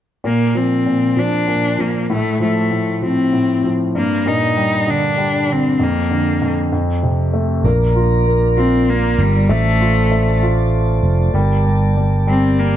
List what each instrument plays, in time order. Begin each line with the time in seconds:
0.24 grand piano A#2, cello A#3
0.55 grand piano F3, cello C4
0.86 grand piano A#2
1.17 grand piano F3, cello D4
1.48 grand piano A#2
1.78 grand piano F3, cello A#3
2.10 grand piano A2, cello A3
2.40 grand piano F3, cello A3
2.71 grand piano A2
3.02 grand piano F3, cello C4
3.33 grand piano A2
3.64 grand piano F3
3.95 grand piano G2, cello A#3
4.26 grand piano A#2, cello D#4
4.56 grand piano G3
4.82 cello D#4
4.87 grand piano D3, cello D4
5.17 grand piano G3
5.49 grand piano D3, cello C4
5.79 grand piano F2, cello A#3
6.11 grand piano D3
6.42 grand piano F2
6.72 grand piano F2
7.03 grand piano C3
7.34 grand piano A3
7.64 fretless electric bass A#1, grand piano A#3, tonewheel organ F4 A#4 D5 A#5
7.96 grand piano F4
8.27 grand piano A#3
8.57 cello C4, grand piano F4
8.90 cello A#3
9.19 fretless electric bass G1, cello G3
9.49 fretless electric bass A1, grand piano A3, cello A3, tonewheel organ C5 A5
9.81 grand piano F4
10.12 grand piano A3
10.43 grand piano F4
11.03 fretless electric bass F1
11.33 fretless electric bass G1, grand piano G3, tonewheel organ G4 A#4
11.66 grand piano G3
11.97 grand piano G3
12.27 grand piano G3, cello C4
12.59 cello A#3